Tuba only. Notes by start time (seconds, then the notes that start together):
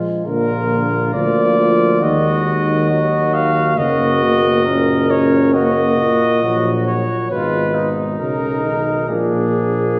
0.25 A#1
1.14 D2
2.02 D#2
3.78 F#1
6.43 A#1
7.31 G#1
8.20 B1
9.10 A#1